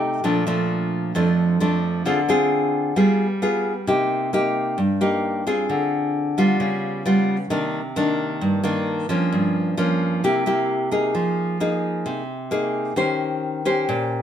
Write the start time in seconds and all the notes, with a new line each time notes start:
Already playing: C3 A3 D#4 G4
0.24 A#2 F3 A3 D4
0.47 F3 A3 D4
1.15 F2 F3 A3 D4
1.60 F3 A3 D4
2.05 D3 C4 F4 G#4
2.29 C4 F4 G#4
2.96 G3 B3 F4 G#4
3.42 B3 F4 G#4
3.87 C3 A#3 D#4 G4
4.33 A#3 D#4 G4
4.78 G2
5.01 A#3 D#4 G4
5.47 C4 F4 G#4
5.69 D3
6.38 G3 B3 F4
6.60 C#3
7.05 G3 B3 F4
7.50 C3 D#3 A#3 D4
7.96 D#3 A#3 D4
8.41 G2
8.63 D#3 A#3 D4
9.09 F3 A#3 C#4
9.32 G2
9.77 F3 A#3 C#4
10.24 C3 A#3 E4 G4
10.46 A#3 E4 G4
10.91 A#3 D#4 G#4
11.15 F3
11.60 A#3 D#4 G#4
12.06 C3
12.51 A#3 D#4 G#4
12.96 D#3 C#4 G4 C5
13.65 C#4 G4 C5
13.89 A#2